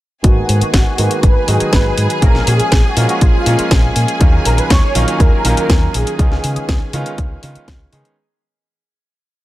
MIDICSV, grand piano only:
0, 0, Header, 1, 2, 480
1, 0, Start_track
1, 0, Tempo, 495868
1, 235, Time_signature, 4, 2, 24, 8
1, 9147, End_track
2, 0, Start_track
2, 0, Title_t, "Grand piano"
2, 0, Program_c, 0, 0
2, 221, Note_on_c, 0, 51, 68
2, 226, Note_on_c, 0, 56, 62
2, 232, Note_on_c, 0, 58, 63
2, 237, Note_on_c, 0, 59, 62
2, 240, Note_on_c, 0, 66, 74
2, 919, Note_off_c, 0, 51, 0
2, 922, Note_off_c, 0, 56, 0
2, 925, Note_off_c, 0, 58, 0
2, 927, Note_off_c, 0, 59, 0
2, 929, Note_off_c, 0, 66, 0
2, 948, Note_on_c, 0, 51, 83
2, 950, Note_on_c, 0, 56, 75
2, 953, Note_on_c, 0, 58, 76
2, 954, Note_on_c, 0, 59, 77
2, 958, Note_on_c, 0, 66, 90
2, 1403, Note_off_c, 0, 51, 0
2, 1404, Note_off_c, 0, 56, 0
2, 1405, Note_off_c, 0, 58, 0
2, 1406, Note_off_c, 0, 59, 0
2, 1408, Note_off_c, 0, 66, 0
2, 1422, Note_on_c, 0, 51, 81
2, 1428, Note_on_c, 0, 56, 74
2, 1433, Note_on_c, 0, 54, 71
2, 1438, Note_on_c, 0, 59, 73
2, 1442, Note_on_c, 0, 66, 88
2, 2120, Note_off_c, 0, 51, 0
2, 2123, Note_off_c, 0, 56, 0
2, 2125, Note_off_c, 0, 54, 0
2, 2128, Note_off_c, 0, 59, 0
2, 2130, Note_off_c, 0, 66, 0
2, 2144, Note_on_c, 0, 53, 70
2, 2149, Note_on_c, 0, 56, 65
2, 2154, Note_on_c, 0, 58, 64
2, 2158, Note_on_c, 0, 61, 65
2, 2164, Note_on_c, 0, 65, 75
2, 2841, Note_off_c, 0, 53, 0
2, 2843, Note_off_c, 0, 56, 0
2, 2846, Note_off_c, 0, 58, 0
2, 2848, Note_off_c, 0, 61, 0
2, 2851, Note_off_c, 0, 65, 0
2, 2868, Note_on_c, 0, 53, 86
2, 2873, Note_on_c, 0, 56, 81
2, 2874, Note_on_c, 0, 58, 79
2, 2878, Note_on_c, 0, 61, 78
2, 2880, Note_on_c, 0, 65, 90
2, 3323, Note_off_c, 0, 53, 0
2, 3325, Note_off_c, 0, 56, 0
2, 3326, Note_off_c, 0, 58, 0
2, 3328, Note_off_c, 0, 61, 0
2, 3329, Note_off_c, 0, 65, 0
2, 3344, Note_on_c, 0, 53, 80
2, 3348, Note_on_c, 0, 56, 75
2, 3353, Note_on_c, 0, 58, 78
2, 3357, Note_on_c, 0, 61, 78
2, 3364, Note_on_c, 0, 65, 94
2, 4041, Note_off_c, 0, 53, 0
2, 4043, Note_off_c, 0, 56, 0
2, 4045, Note_off_c, 0, 58, 0
2, 4047, Note_off_c, 0, 61, 0
2, 4051, Note_off_c, 0, 65, 0
2, 4063, Note_on_c, 0, 51, 74
2, 4067, Note_on_c, 0, 54, 66
2, 4074, Note_on_c, 0, 58, 68
2, 4076, Note_on_c, 0, 61, 67
2, 4083, Note_on_c, 0, 65, 80
2, 4760, Note_off_c, 0, 51, 0
2, 4762, Note_off_c, 0, 54, 0
2, 4766, Note_off_c, 0, 58, 0
2, 4767, Note_off_c, 0, 61, 0
2, 4770, Note_off_c, 0, 65, 0
2, 4789, Note_on_c, 0, 51, 87
2, 4792, Note_on_c, 0, 54, 80
2, 4793, Note_on_c, 0, 58, 80
2, 4795, Note_on_c, 0, 61, 78
2, 4799, Note_on_c, 0, 65, 96
2, 5243, Note_off_c, 0, 51, 0
2, 5245, Note_off_c, 0, 54, 0
2, 5245, Note_off_c, 0, 58, 0
2, 5247, Note_off_c, 0, 61, 0
2, 5249, Note_off_c, 0, 65, 0
2, 5268, Note_on_c, 0, 51, 85
2, 5273, Note_on_c, 0, 54, 79
2, 5277, Note_on_c, 0, 58, 79
2, 5282, Note_on_c, 0, 61, 79
2, 5286, Note_on_c, 0, 65, 94
2, 5963, Note_off_c, 0, 51, 0
2, 5965, Note_off_c, 0, 54, 0
2, 5967, Note_off_c, 0, 58, 0
2, 5970, Note_off_c, 0, 61, 0
2, 5972, Note_off_c, 0, 65, 0
2, 5986, Note_on_c, 0, 51, 74
2, 5990, Note_on_c, 0, 56, 69
2, 5995, Note_on_c, 0, 59, 68
2, 5999, Note_on_c, 0, 61, 68
2, 6003, Note_on_c, 0, 65, 80
2, 6682, Note_off_c, 0, 51, 0
2, 6684, Note_off_c, 0, 56, 0
2, 6686, Note_off_c, 0, 59, 0
2, 6688, Note_off_c, 0, 61, 0
2, 6691, Note_off_c, 0, 65, 0
2, 6710, Note_on_c, 0, 51, 88
2, 6713, Note_on_c, 0, 56, 83
2, 6714, Note_on_c, 0, 59, 83
2, 6717, Note_on_c, 0, 61, 80
2, 6720, Note_on_c, 0, 65, 102
2, 7164, Note_off_c, 0, 51, 0
2, 7165, Note_off_c, 0, 56, 0
2, 7166, Note_off_c, 0, 59, 0
2, 7167, Note_off_c, 0, 61, 0
2, 7169, Note_off_c, 0, 65, 0
2, 7188, Note_on_c, 0, 51, 79
2, 7191, Note_on_c, 0, 56, 72
2, 7193, Note_on_c, 0, 59, 75
2, 7197, Note_on_c, 0, 61, 74
2, 7199, Note_on_c, 0, 65, 88
2, 7643, Note_off_c, 0, 51, 0
2, 7644, Note_off_c, 0, 56, 0
2, 7646, Note_off_c, 0, 59, 0
2, 7648, Note_off_c, 0, 61, 0
2, 7649, Note_off_c, 0, 65, 0
2, 7667, Note_on_c, 0, 51, 90
2, 7671, Note_on_c, 0, 56, 83
2, 7673, Note_on_c, 0, 59, 82
2, 7674, Note_on_c, 0, 61, 83
2, 7677, Note_on_c, 0, 68, 95
2, 7882, Note_off_c, 0, 51, 0
2, 7884, Note_off_c, 0, 56, 0
2, 7886, Note_off_c, 0, 59, 0
2, 7886, Note_off_c, 0, 61, 0
2, 7888, Note_off_c, 0, 68, 0
2, 9147, End_track
0, 0, End_of_file